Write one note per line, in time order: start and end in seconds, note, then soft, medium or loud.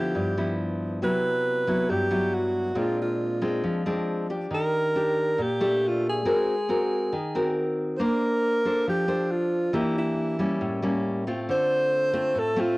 0.00 0.13 D3 medium
0.00 0.33 F3 medium
0.00 0.34 B3 medium
0.00 0.34 E4 medium
0.00 0.57 G4 medium
0.15 1.00 G2 medium
0.37 0.99 F3 medium
0.37 0.99 B3 medium
0.37 0.99 E4 medium
1.02 1.87 C3 medium
1.02 1.64 F#3 medium
1.02 1.64 B3 medium
1.02 1.65 E4 medium
1.02 1.91 B4 loud
1.67 2.08 F#3 medium
1.67 2.08 B3 medium
1.67 2.08 E4 medium
1.90 2.75 G2 medium
1.90 2.36 G4 loud
2.11 2.73 F#3 medium
2.11 2.73 B3 medium
2.11 2.73 E4 medium
2.35 2.80 F#4 medium
2.75 3.61 A#2 medium
2.75 3.38 G#3 medium
2.75 3.38 C4 medium
2.75 3.38 D4 medium
2.75 3.00 F4 medium
3.02 3.84 F4 medium
3.42 3.82 G#3 medium
3.42 3.82 C4 medium
3.42 3.82 D4 medium
3.64 4.49 F3 medium
3.86 4.26 G#3 medium
3.86 4.26 C4 medium
3.86 4.27 D4 medium
4.30 4.95 D4 medium
4.30 4.95 G4 medium
4.51 5.36 D#3 medium
4.51 5.44 A#4 loud
4.96 5.39 D4 medium
4.96 5.39 G4 medium
5.38 6.24 A#2 medium
5.42 5.89 G4 loud
5.61 6.23 A3 medium
5.61 6.23 D4 medium
5.61 6.23 G4 medium
5.88 6.07 F4 medium
6.09 7.77 G#4 medium
6.25 7.11 G#3 medium
6.25 6.54 C4 medium
6.25 6.54 F#4 medium
6.25 6.54 A#4 medium
6.69 7.13 C4 medium
6.69 7.13 F#4 medium
6.69 7.13 A#4 medium
7.12 7.98 D#3 medium
7.35 7.97 C4 medium
7.35 7.97 F#4 medium
7.35 7.97 A#4 medium
7.97 8.85 A#3 medium
7.97 8.62 D4 medium
7.97 8.04 C5 medium
7.97 8.62 C5 medium
8.02 8.89 A#4 loud
8.65 9.05 D4 medium
8.65 9.06 A4 medium
8.65 9.06 C5 medium
8.87 9.72 F3 medium
8.87 9.33 G4 loud
9.08 9.70 D4 medium
9.08 9.71 A4 medium
9.08 9.71 C5 medium
9.31 9.78 F4 medium
9.73 10.59 E3 medium
9.73 10.36 A#3 medium
9.73 10.36 D4 medium
9.73 9.97 E4 medium
9.73 10.36 G4 medium
9.99 10.80 E4 medium
10.39 10.79 G3 medium
10.39 10.80 A#3 medium
10.39 10.80 C#4 medium
10.61 11.46 A2 medium
10.82 11.23 G3 medium
10.82 11.23 A#3 medium
10.82 11.23 C#4 medium
11.27 12.10 A3 medium
11.27 12.10 C4 medium
11.27 12.11 F4 medium
11.49 12.33 D3 medium
11.49 12.40 C5 loud
12.13 12.53 A3 medium
12.13 12.53 C4 medium
12.13 12.54 F4 medium
12.35 12.78 A2 medium
12.39 12.62 A4 loud
12.56 12.78 A3 medium
12.56 12.78 C4 medium
12.56 12.78 F4 medium
12.56 12.78 F4 loud